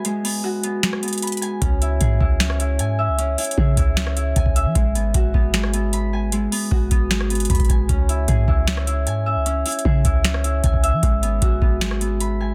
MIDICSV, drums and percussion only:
0, 0, Header, 1, 2, 480
1, 0, Start_track
1, 0, Key_signature, 4, "minor"
1, 0, Tempo, 392157
1, 59, Time_signature, 4, 2, 24, 8
1, 15354, End_track
2, 0, Start_track
2, 0, Title_t, "Drums"
2, 59, Note_on_c, 9, 42, 77
2, 181, Note_off_c, 9, 42, 0
2, 304, Note_on_c, 9, 46, 82
2, 426, Note_off_c, 9, 46, 0
2, 777, Note_on_c, 9, 42, 80
2, 900, Note_off_c, 9, 42, 0
2, 1018, Note_on_c, 9, 38, 121
2, 1025, Note_on_c, 9, 42, 73
2, 1138, Note_on_c, 9, 37, 88
2, 1141, Note_off_c, 9, 38, 0
2, 1147, Note_off_c, 9, 42, 0
2, 1259, Note_on_c, 9, 42, 60
2, 1260, Note_off_c, 9, 37, 0
2, 1319, Note_off_c, 9, 42, 0
2, 1319, Note_on_c, 9, 42, 59
2, 1379, Note_off_c, 9, 42, 0
2, 1379, Note_on_c, 9, 42, 61
2, 1439, Note_off_c, 9, 42, 0
2, 1439, Note_on_c, 9, 42, 62
2, 1499, Note_off_c, 9, 42, 0
2, 1499, Note_on_c, 9, 42, 75
2, 1559, Note_off_c, 9, 42, 0
2, 1559, Note_on_c, 9, 42, 67
2, 1619, Note_off_c, 9, 42, 0
2, 1619, Note_on_c, 9, 42, 55
2, 1679, Note_off_c, 9, 42, 0
2, 1679, Note_on_c, 9, 42, 45
2, 1742, Note_off_c, 9, 42, 0
2, 1742, Note_on_c, 9, 42, 81
2, 1865, Note_off_c, 9, 42, 0
2, 1979, Note_on_c, 9, 36, 120
2, 1979, Note_on_c, 9, 42, 75
2, 2101, Note_off_c, 9, 36, 0
2, 2102, Note_off_c, 9, 42, 0
2, 2224, Note_on_c, 9, 42, 76
2, 2347, Note_off_c, 9, 42, 0
2, 2456, Note_on_c, 9, 42, 73
2, 2459, Note_on_c, 9, 36, 94
2, 2578, Note_off_c, 9, 42, 0
2, 2581, Note_off_c, 9, 36, 0
2, 2700, Note_on_c, 9, 36, 98
2, 2823, Note_off_c, 9, 36, 0
2, 2939, Note_on_c, 9, 38, 124
2, 2945, Note_on_c, 9, 42, 74
2, 3058, Note_on_c, 9, 37, 90
2, 3061, Note_off_c, 9, 38, 0
2, 3067, Note_off_c, 9, 42, 0
2, 3180, Note_on_c, 9, 42, 72
2, 3181, Note_off_c, 9, 37, 0
2, 3303, Note_off_c, 9, 42, 0
2, 3417, Note_on_c, 9, 42, 74
2, 3540, Note_off_c, 9, 42, 0
2, 3899, Note_on_c, 9, 42, 79
2, 4022, Note_off_c, 9, 42, 0
2, 4139, Note_on_c, 9, 42, 64
2, 4144, Note_on_c, 9, 46, 77
2, 4218, Note_off_c, 9, 42, 0
2, 4218, Note_on_c, 9, 42, 63
2, 4266, Note_off_c, 9, 46, 0
2, 4298, Note_off_c, 9, 42, 0
2, 4298, Note_on_c, 9, 42, 66
2, 4378, Note_on_c, 9, 36, 97
2, 4421, Note_off_c, 9, 42, 0
2, 4501, Note_off_c, 9, 36, 0
2, 4616, Note_on_c, 9, 42, 78
2, 4619, Note_on_c, 9, 36, 93
2, 4739, Note_off_c, 9, 42, 0
2, 4742, Note_off_c, 9, 36, 0
2, 4858, Note_on_c, 9, 38, 124
2, 4864, Note_on_c, 9, 42, 73
2, 4977, Note_on_c, 9, 37, 87
2, 4981, Note_off_c, 9, 38, 0
2, 4987, Note_off_c, 9, 42, 0
2, 5100, Note_off_c, 9, 37, 0
2, 5100, Note_on_c, 9, 42, 69
2, 5223, Note_off_c, 9, 42, 0
2, 5337, Note_on_c, 9, 42, 76
2, 5339, Note_on_c, 9, 36, 94
2, 5458, Note_off_c, 9, 36, 0
2, 5458, Note_on_c, 9, 36, 89
2, 5459, Note_off_c, 9, 42, 0
2, 5580, Note_off_c, 9, 36, 0
2, 5582, Note_on_c, 9, 42, 81
2, 5704, Note_off_c, 9, 42, 0
2, 5819, Note_on_c, 9, 36, 124
2, 5819, Note_on_c, 9, 42, 80
2, 5941, Note_off_c, 9, 36, 0
2, 5941, Note_off_c, 9, 42, 0
2, 6064, Note_on_c, 9, 42, 72
2, 6186, Note_off_c, 9, 42, 0
2, 6296, Note_on_c, 9, 42, 72
2, 6298, Note_on_c, 9, 36, 92
2, 6418, Note_off_c, 9, 42, 0
2, 6421, Note_off_c, 9, 36, 0
2, 6540, Note_on_c, 9, 36, 94
2, 6662, Note_off_c, 9, 36, 0
2, 6778, Note_on_c, 9, 38, 120
2, 6784, Note_on_c, 9, 42, 75
2, 6898, Note_on_c, 9, 37, 85
2, 6900, Note_off_c, 9, 38, 0
2, 6907, Note_off_c, 9, 42, 0
2, 7020, Note_off_c, 9, 37, 0
2, 7020, Note_on_c, 9, 42, 72
2, 7143, Note_off_c, 9, 42, 0
2, 7258, Note_on_c, 9, 42, 75
2, 7380, Note_off_c, 9, 42, 0
2, 7739, Note_on_c, 9, 42, 78
2, 7861, Note_off_c, 9, 42, 0
2, 7984, Note_on_c, 9, 46, 80
2, 8106, Note_off_c, 9, 46, 0
2, 8219, Note_on_c, 9, 36, 92
2, 8341, Note_off_c, 9, 36, 0
2, 8457, Note_on_c, 9, 42, 77
2, 8460, Note_on_c, 9, 36, 93
2, 8580, Note_off_c, 9, 42, 0
2, 8582, Note_off_c, 9, 36, 0
2, 8699, Note_on_c, 9, 38, 124
2, 8705, Note_on_c, 9, 42, 74
2, 8819, Note_on_c, 9, 37, 89
2, 8821, Note_off_c, 9, 38, 0
2, 8827, Note_off_c, 9, 42, 0
2, 8939, Note_on_c, 9, 42, 58
2, 8941, Note_off_c, 9, 37, 0
2, 8999, Note_off_c, 9, 42, 0
2, 8999, Note_on_c, 9, 42, 59
2, 9059, Note_off_c, 9, 42, 0
2, 9059, Note_on_c, 9, 42, 59
2, 9119, Note_off_c, 9, 42, 0
2, 9119, Note_on_c, 9, 42, 61
2, 9178, Note_off_c, 9, 42, 0
2, 9178, Note_on_c, 9, 42, 80
2, 9179, Note_on_c, 9, 36, 94
2, 9239, Note_off_c, 9, 42, 0
2, 9239, Note_on_c, 9, 42, 69
2, 9298, Note_off_c, 9, 36, 0
2, 9298, Note_on_c, 9, 36, 88
2, 9299, Note_off_c, 9, 42, 0
2, 9299, Note_on_c, 9, 42, 56
2, 9358, Note_off_c, 9, 42, 0
2, 9358, Note_on_c, 9, 42, 44
2, 9419, Note_off_c, 9, 36, 0
2, 9419, Note_on_c, 9, 36, 98
2, 9421, Note_off_c, 9, 42, 0
2, 9421, Note_on_c, 9, 42, 81
2, 9541, Note_off_c, 9, 36, 0
2, 9544, Note_off_c, 9, 42, 0
2, 9659, Note_on_c, 9, 36, 122
2, 9659, Note_on_c, 9, 42, 76
2, 9781, Note_off_c, 9, 36, 0
2, 9781, Note_off_c, 9, 42, 0
2, 9904, Note_on_c, 9, 42, 74
2, 10026, Note_off_c, 9, 42, 0
2, 10135, Note_on_c, 9, 42, 74
2, 10138, Note_on_c, 9, 36, 92
2, 10258, Note_off_c, 9, 42, 0
2, 10261, Note_off_c, 9, 36, 0
2, 10380, Note_on_c, 9, 36, 94
2, 10502, Note_off_c, 9, 36, 0
2, 10618, Note_on_c, 9, 38, 120
2, 10625, Note_on_c, 9, 42, 74
2, 10738, Note_on_c, 9, 37, 87
2, 10741, Note_off_c, 9, 38, 0
2, 10747, Note_off_c, 9, 42, 0
2, 10861, Note_off_c, 9, 37, 0
2, 10861, Note_on_c, 9, 42, 71
2, 10983, Note_off_c, 9, 42, 0
2, 11098, Note_on_c, 9, 42, 73
2, 11221, Note_off_c, 9, 42, 0
2, 11579, Note_on_c, 9, 42, 78
2, 11702, Note_off_c, 9, 42, 0
2, 11819, Note_on_c, 9, 42, 63
2, 11824, Note_on_c, 9, 46, 80
2, 11900, Note_off_c, 9, 42, 0
2, 11900, Note_on_c, 9, 42, 63
2, 11946, Note_off_c, 9, 46, 0
2, 11980, Note_off_c, 9, 42, 0
2, 11980, Note_on_c, 9, 42, 63
2, 12059, Note_on_c, 9, 36, 96
2, 12102, Note_off_c, 9, 42, 0
2, 12181, Note_off_c, 9, 36, 0
2, 12298, Note_on_c, 9, 42, 77
2, 12300, Note_on_c, 9, 36, 95
2, 12421, Note_off_c, 9, 42, 0
2, 12423, Note_off_c, 9, 36, 0
2, 12540, Note_on_c, 9, 38, 123
2, 12546, Note_on_c, 9, 42, 77
2, 12659, Note_on_c, 9, 37, 85
2, 12662, Note_off_c, 9, 38, 0
2, 12668, Note_off_c, 9, 42, 0
2, 12782, Note_off_c, 9, 37, 0
2, 12782, Note_on_c, 9, 42, 68
2, 12905, Note_off_c, 9, 42, 0
2, 13019, Note_on_c, 9, 42, 77
2, 13020, Note_on_c, 9, 36, 92
2, 13140, Note_off_c, 9, 36, 0
2, 13140, Note_on_c, 9, 36, 84
2, 13141, Note_off_c, 9, 42, 0
2, 13262, Note_off_c, 9, 36, 0
2, 13264, Note_on_c, 9, 42, 83
2, 13386, Note_off_c, 9, 42, 0
2, 13500, Note_on_c, 9, 36, 120
2, 13500, Note_on_c, 9, 42, 79
2, 13622, Note_off_c, 9, 36, 0
2, 13623, Note_off_c, 9, 42, 0
2, 13745, Note_on_c, 9, 42, 74
2, 13868, Note_off_c, 9, 42, 0
2, 13976, Note_on_c, 9, 42, 74
2, 13979, Note_on_c, 9, 36, 94
2, 14099, Note_off_c, 9, 42, 0
2, 14102, Note_off_c, 9, 36, 0
2, 14221, Note_on_c, 9, 36, 97
2, 14343, Note_off_c, 9, 36, 0
2, 14459, Note_on_c, 9, 38, 123
2, 14466, Note_on_c, 9, 42, 75
2, 14579, Note_on_c, 9, 37, 87
2, 14582, Note_off_c, 9, 38, 0
2, 14588, Note_off_c, 9, 42, 0
2, 14701, Note_off_c, 9, 37, 0
2, 14701, Note_on_c, 9, 42, 67
2, 14824, Note_off_c, 9, 42, 0
2, 14939, Note_on_c, 9, 42, 77
2, 15061, Note_off_c, 9, 42, 0
2, 15354, End_track
0, 0, End_of_file